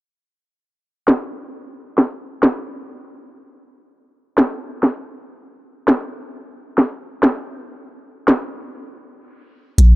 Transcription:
1.08 snare loud
1.98 snare medium
2.43 snare loud
4.38 snare loud
4.83 snare medium
5.88 snare loud
6.78 snare medium
7.23 snare loud
8.28 snare loud
9.78 9.96 A#1 loud
9.78 closed hi-hat medium

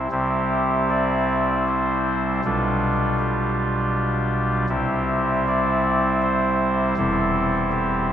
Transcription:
0.11 2.41 C2 medium
0.11 2.41 C3 medium
0.11 2.41 G3 soft
0.11 2.41 C4 soft
0.11 2.41 E4 soft
0.11 0.89 G4 medium
0.90 1.65 D5 medium
1.68 2.42 C5 medium
2.45 4.66 B1 medium
2.45 4.66 B2 medium
2.45 4.66 G3 soft
2.45 4.66 D4 soft
2.45 4.66 F4 soft
2.45 3.17 A4 medium
3.19 4.66 G4 medium
4.69 6.94 C2 medium
4.69 6.94 C3 medium
4.69 6.94 G3 medium
4.69 6.94 C4 soft
4.69 6.94 E4 soft
4.69 5.46 G4 medium
5.48 6.21 D5 loud
6.22 6.95 C5 medium
6.97 8.13 E1 medium
6.97 8.13 E2 medium
6.97 8.13 G3 medium
6.97 8.13 C4 soft
6.97 8.13 E4 medium
6.97 7.70 A4 loud
7.72 8.13 G4 medium

